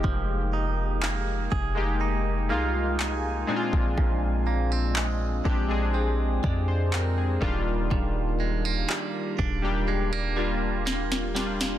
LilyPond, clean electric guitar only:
\new Staff \with { instrumentName = "Clean electric guitar" } { \time 4/4 \key ees \major \tempo 4 = 61 f8 ees'8 bes8 aes'8 ees'8 bes8 ees'8 bes,8 | bes,8 bes16 c'16 aes8 d'8 c'8 aes8 c'8 ees8 | ees8 aes16 bes16 g8 d'8 aes16 bes16 g8 bes8 g8 | }